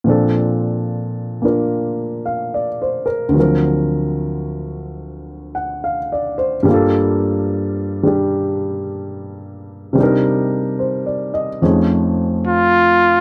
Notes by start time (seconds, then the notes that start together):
0.04 A#2 F3 C4
0.08 D4 A4
1.42 A#3 D4 F4 A#4
2.26 F5
2.54 D5
2.82 C5
3.06 A#4
3.29 D2 D3
3.34 F3 F#3 C4
3.40 A#4
5.55 F#5
5.84 F5
6.12 D5
6.38 C5
6.63 G2 G3
6.69 A#3 F4
6.74 A4
8.03 G3 D4
8.07 G4
9.93 C3 G3
9.98 D4 D#4
10.03 A#4
10.79 C5
11.06 D5
11.34 D#5
11.62 F2 F3 A3 C#4 D#4 G#4
12.47 F4